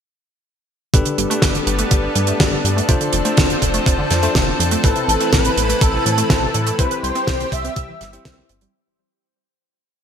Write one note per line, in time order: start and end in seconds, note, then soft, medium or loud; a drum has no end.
0.94 1.02 G1 loud
0.94 1.01 B2 loud
0.94 2.87 G3 medium
0.94 2.87 B3 medium
0.94 1.27 D4 medium
0.94 4.80 D4 medium
0.94 1.27 G4 medium
0.94 1.27 A4 medium
0.94 6.75 A4 medium
0.94 1.27 B4 loud
0.94 kick loud
0.94 closed hi-hat medium
1.06 1.13 D3 medium
1.06 closed hi-hat medium
1.18 1.27 G1 loud
1.18 1.22 G3 medium
1.18 closed hi-hat medium
1.30 1.41 A3 loud
1.30 2.37 D4 medium
1.30 2.37 G4 medium
1.30 2.37 A4 medium
1.30 2.37 B4 medium
1.30 closed hi-hat medium
1.42 1.60 G1 medium
1.42 1.50 B2 loud
1.42 kick loud
1.42 snare loud
1.42 closed hi-hat medium
1.54 1.62 D3 medium
1.54 closed hi-hat medium
1.67 1.84 G1 loud
1.67 1.71 G3 medium
1.67 closed hi-hat medium
1.79 1.90 A3 medium
1.79 closed hi-hat medium
1.91 2.08 G1 medium
1.91 1.98 B2 loud
1.91 kick loud
1.91 closed hi-hat medium
2.03 2.11 D3 medium
2.15 2.33 G2 loud
2.15 2.20 G3 medium
2.15 closed hi-hat medium
2.27 2.39 A3 loud
2.27 closed hi-hat medium
2.40 2.57 G1 medium
2.40 2.47 B2 loud
2.40 2.59 D4 medium
2.40 2.59 G4 medium
2.40 2.59 A4 medium
2.40 2.59 D5 medium
2.40 kick loud
2.40 snare loud
2.40 closed hi-hat medium
2.52 2.59 D3 medium
2.64 2.82 G2 medium
2.64 2.69 G3 medium
2.64 closed hi-hat medium
2.77 2.88 A3 loud
2.77 closed hi-hat medium
2.89 2.97 F1 loud
2.89 2.96 C3 loud
2.89 4.82 F3 medium
2.89 8.70 C4 medium
2.89 3.22 D4 loud
2.89 3.22 F4 medium
2.89 3.22 A4 medium
2.89 3.22 C5 loud
2.89 kick loud
2.89 closed hi-hat medium
3.01 3.08 D3 medium
3.01 closed hi-hat medium
3.13 3.22 F1 medium
3.13 3.17 F3 medium
3.13 closed hi-hat medium
3.25 3.36 A3 loud
3.25 3.56 D4 medium
3.25 3.56 F4 medium
3.25 3.56 A4 medium
3.25 3.56 C5 medium
3.25 closed hi-hat medium
3.37 3.55 F1 medium
3.37 3.45 C3 loud
3.37 kick loud
3.37 snare loud
3.37 closed hi-hat medium
3.50 3.57 D3 medium
3.50 closed hi-hat soft
3.62 3.79 F1 medium
3.62 3.66 F3 medium
3.62 kick medium
3.62 closed hi-hat medium
3.74 3.85 A3 loud
3.74 closed hi-hat medium
3.86 4.03 F1 medium
3.86 3.94 C3 loud
3.86 kick loud
3.86 closed hi-hat medium
3.98 4.06 D3 medium
4.10 4.28 F2 loud
4.10 4.15 F3 medium
4.10 snare soft
4.10 closed hi-hat medium
4.23 4.34 A3 loud
4.23 4.81 D4 medium
4.23 4.81 F4 medium
4.23 4.81 A4 medium
4.23 4.81 C5 loud
4.23 closed hi-hat medium
4.35 4.52 F1 medium
4.35 4.42 C3 loud
4.35 kick loud
4.35 snare loud
4.35 closed hi-hat medium
4.47 4.55 D3 medium
4.59 4.77 F2 medium
4.59 4.64 F3 medium
4.59 closed hi-hat loud
4.71 4.83 A3 loud
4.71 closed hi-hat medium
4.84 4.92 A1 loud
4.84 4.91 B2 loud
4.84 8.70 E3 medium
4.84 5.18 C4 medium
4.84 5.18 E4 medium
4.84 5.18 A4 medium
4.84 5.29 A4 medium
4.84 5.18 B4 loud
4.84 6.77 B4 medium
4.84 kick loud
4.84 closed hi-hat medium
4.96 5.03 C3 medium
4.96 closed hi-hat soft
5.08 5.17 A1 loud
5.08 5.13 E3 medium
5.08 closed hi-hat medium
5.20 5.31 A3 loud
5.20 6.27 C4 medium
5.20 6.27 E4 medium
5.20 6.27 A4 medium
5.20 6.27 B4 medium
5.20 closed hi-hat medium
5.33 5.50 A1 medium
5.33 5.40 B2 loud
5.33 5.78 B4 medium
5.33 kick loud
5.33 snare loud
5.33 closed hi-hat medium
5.45 5.52 C3 medium
5.45 closed hi-hat medium
5.57 5.74 A1 medium
5.57 5.61 E3 medium
5.57 closed hi-hat medium
5.69 5.80 A3 medium
5.69 closed hi-hat medium
5.81 5.99 A1 medium
5.81 5.89 B2 loud
5.81 6.27 A4 medium
5.81 kick loud
5.81 closed hi-hat medium
5.94 6.01 C3 medium
6.06 6.23 A2 loud
6.06 6.10 E3 medium
6.06 closed hi-hat medium
6.18 6.29 A3 loud
6.18 closed hi-hat medium
6.30 6.47 A1 medium
6.30 6.38 B2 loud
6.30 6.49 C4 medium
6.30 6.49 E4 medium
6.30 6.49 A4 medium
6.30 6.76 A4 medium
6.30 6.49 C5 medium
6.30 kick loud
6.30 snare loud
6.30 closed hi-hat medium
6.42 6.50 C3 medium
6.54 6.72 A2 medium
6.54 6.59 E3 medium
6.54 closed hi-hat medium
6.67 6.78 A3 loud
6.67 closed hi-hat medium
6.79 6.88 C2 loud
6.79 6.86 C3 loud
6.79 8.72 G3 medium
6.79 7.13 C4 loud
6.79 7.13 E4 medium
6.79 8.72 G4 medium
6.79 7.13 G4 medium
6.79 7.02 B4 loud
6.79 7.13 C5 loud
6.79 kick loud
6.79 closed hi-hat medium
6.91 6.98 E3 medium
6.91 closed hi-hat medium
7.03 7.12 C2 loud
7.03 7.08 G3 medium
7.03 7.54 C5 loud
7.03 closed hi-hat medium
7.15 7.27 C4 loud
7.15 7.46 C4 medium
7.15 7.46 E4 medium
7.15 7.46 G4 medium
7.15 7.46 C5 medium
7.15 closed hi-hat medium
7.27 7.45 C2 medium
7.27 7.35 C3 loud
7.27 kick loud
7.27 snare loud
7.27 closed hi-hat medium
7.40 7.47 E3 medium
7.40 closed hi-hat soft
7.52 7.69 C2 medium
7.52 7.57 G3 medium
7.52 8.50 E5 loud
7.52 kick medium
7.52 closed hi-hat medium
7.64 7.75 C4 loud
7.64 closed hi-hat medium
7.76 7.94 C2 medium
7.76 7.84 C3 loud
7.76 kick loud
7.76 closed hi-hat medium
7.89 7.96 E3 medium
8.01 8.18 G1 loud
8.01 8.12 G3 loud
8.01 snare soft
8.01 closed hi-hat medium
8.13 8.24 G3 medium
8.13 8.71 C4 medium
8.13 8.71 E4 medium
8.13 8.71 G4 medium
8.13 8.71 C5 loud
8.13 closed hi-hat medium
8.25 8.42 C2 medium
8.25 8.33 C5 medium
8.25 kick loud
8.25 snare loud
8.25 closed hi-hat medium
8.38 8.45 G4 medium
8.49 8.67 G1 medium
8.49 8.57 C4 medium
8.49 closed hi-hat medium
8.61 8.73 G3 loud
8.61 closed hi-hat medium